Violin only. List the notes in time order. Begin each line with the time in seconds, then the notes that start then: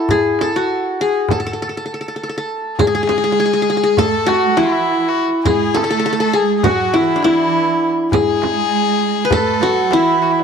2.78 G#4
4.00 A4
4.28 F#4
4.57 E4
5.08 F#4
5.45 G#4
5.76 A4
6.20 A4
6.35 G#4
6.57 G#4
6.66 F#4
6.95 E4
7.26 E4
8.14 G#4
9.34 A4
9.92 E4
10.22 F#4
10.32 E4
10.39 D4